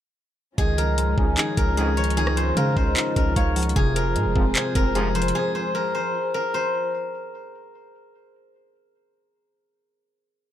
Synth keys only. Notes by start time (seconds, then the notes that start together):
0.58 D#3
0.78 F3
0.98 G#3
1.18 C#4
1.38 D#4
1.58 C#4
1.77 G#3
1.97 F3
2.17 D#3
2.37 F3
2.57 G#3
2.77 C#4
2.97 D#4
3.16 C#4
3.36 G#3
3.56 F3
3.76 C3
3.96 F3
4.16 G#3
4.36 C4
4.55 C5
4.75 C4
4.95 G#3
5.15 F3